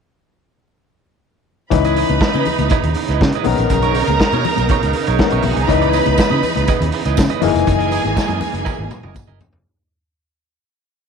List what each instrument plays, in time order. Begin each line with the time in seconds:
1.70 fingered electric bass C#2, string section C#3 E3 B3 D#4, clav E3 C#4 D#4 B4, violin section B4 B5, muted clean electric guitar stroke, kick, closed hi-hat, low conga
1.84 clean electric guitar E4 B4 D#5, closed hi-hat
1.96 clean electric guitar E4 B4 D#5, open hi-hat, muted conga
2.09 fingered electric bass C#2, muted clean electric guitar stroke, closed hi-hat, high conga
2.21 muted clean electric guitar stroke, kick, snare
2.33 fingered electric bass C#3, clean electric guitar E4 B4 D#5, closed hi-hat, high conga
2.45 muted clean electric guitar stroke, open hi-hat, muted conga, low conga
2.59 fingered electric bass C#2, muted clean electric guitar stroke, closed hi-hat, high conga
2.70 clean electric guitar E4 B4 D#5, kick, closed hi-hat
2.83 fingered electric bass D#2, muted clean electric guitar stroke, closed hi-hat
2.94 muted clean electric guitar stroke, open hi-hat
3.08 fingered electric bass C#2, clean electric guitar E4 B4 D#5, closed hi-hat
3.21 fingered electric bass C#3, muted clean electric guitar stroke, kick, snare, high conga
3.32 clean electric guitar E4 B4 D#5, closed hi-hat
3.44 fingered electric bass B1, clav D#3 B3 C#4 A#4, string section D#4 A#4, violin section A#4 A#5, muted clean electric guitar stroke, open hi-hat, muted conga, high conga, low conga
3.58 fingered electric bass A#1, muted clean electric guitar stroke, closed hi-hat
3.70 fingered electric bass B1, muted clean electric guitar stroke, kick, closed hi-hat, low conga
3.82 clean electric guitar D#4 A#4 C#5, closed hi-hat
3.95 clean electric guitar D#4 A#4 C#5, open hi-hat
4.07 fingered electric bass C#2, closed hi-hat, high conga
4.20 muted fingered electric bass stroke, muted clean electric guitar stroke, kick, snare, muted conga
4.32 fingered electric bass B2, clean electric guitar D#4 A#4 C#5, closed hi-hat, high conga
4.44 open hi-hat, low conga
4.57 fingered electric bass B1, muted clean electric guitar stroke, closed hi-hat, high conga
4.69 clean electric guitar D#4 A#4 C#5, kick, closed hi-hat, muted conga
4.83 fingered electric bass C#2, muted clean electric guitar stroke, closed hi-hat
4.93 muted clean electric guitar stroke, open hi-hat, muted conga
5.06 fingered electric bass B1, clean electric guitar D#4 A#4 C#5, closed hi-hat
5.18 clav C#3 B3 C#4 A#4, violin section C#4 C#5, muted clean electric guitar stroke, kick, snare, muted conga, high conga
5.25 clav D#3, violin section D#4 D#5
5.30 fingered electric bass B1, clean electric guitar D#4 A#4 C#5, closed hi-hat
5.37 violin section E4 E5
5.42 fingered electric bass B1, violin section F#4 F#5, open hi-hat, high conga, low conga
5.53 fingered electric bass C2, violin section G#4 G#5, muted clean electric guitar stroke, closed hi-hat
5.62 violin section A#4 A#5
5.68 fingered electric bass C#2, clav E3 C#4 D#4 B4, string section E3, violin section B4 B5, muted clean electric guitar stroke, kick, closed hi-hat, low conga
5.81 clean electric guitar E4 B4 D#5, closed hi-hat
5.93 clean electric guitar E4 B4 D#5, open hi-hat, tambourine, muted conga
6.06 fingered electric bass C#2, muted clean electric guitar stroke, closed hi-hat, high conga
6.18 muted clean electric guitar stroke, muted fingered electric bass stroke, kick, snare, tambourine
6.30 fingered electric bass C#3, clean electric guitar E4 B4 D#5, closed hi-hat, high conga
6.43 muted clean electric guitar stroke, open hi-hat, tambourine, muted conga, low conga
6.55 fingered electric bass C#2, muted clean electric guitar stroke, closed hi-hat, high conga
6.67 clean electric guitar E4 B4 D#5, kick, closed hi-hat, tambourine
6.81 fingered electric bass D#2, muted clean electric guitar stroke, closed hi-hat
6.92 muted clean electric guitar stroke, open hi-hat, tambourine
7.05 fingered electric bass C#2, clean electric guitar E4 B4 D#5, closed hi-hat
7.17 fingered electric bass C#3, muted clean electric guitar stroke, kick, snare, tambourine, muted conga, high conga
7.29 clean electric guitar E4 B4 D#5, closed hi-hat
7.41 fingered electric bass F#1, clav E3 A#3 D#4 G#4, string section E3 G#3 A#3 D#4, clean electric guitar E4 A#4 D#5, violin section G#4 G#5, open hi-hat, tambourine, high conga, low conga
7.54 fingered electric bass F1, muted clean electric guitar stroke, closed hi-hat
7.67 fingered electric bass F#1, muted clean electric guitar stroke, kick, closed hi-hat, tambourine, low conga
7.79 clean electric guitar E4 A#4 D#5, closed hi-hat
7.91 clean electric guitar E4 A#4 D#5, open hi-hat, tambourine, muted conga
8.04 fingered electric bass G#1, muted clean electric guitar stroke, closed hi-hat, high conga
8.16 muted clean electric guitar stroke, muted fingered electric bass stroke, kick, snare, tambourine, muted conga
8.28 fingered electric bass F#2, clean electric guitar E4 A#4 D#5, closed hi-hat, high conga
8.41 muted clean electric guitar stroke, open hi-hat, tambourine, muted conga, low conga
8.53 fingered electric bass F#1, muted clean electric guitar stroke, closed hi-hat, high conga
8.65 clean electric guitar E4 A#4 D#5, kick, high tom, tambourine, muted conga
8.78 fingered electric bass G#1, muted clean electric guitar stroke, high tom
8.91 muted clean electric guitar stroke, mid tom, tambourine, muted conga, high conga
9.03 fingered electric bass F#1, clean electric guitar E4 A#4 D#5, mid tom
9.15 muted clean electric guitar stroke, kick, mid tom, tambourine, high conga
9.27 fingered electric bass F#1, clean electric guitar E4 A#4 D#5, mid tom
9.40 fingered electric bass E1, muted clean electric guitar stroke, floor tom, tambourine, high conga, low conga
9.53 fingered electric bass F1, muted clean electric guitar stroke, floor tom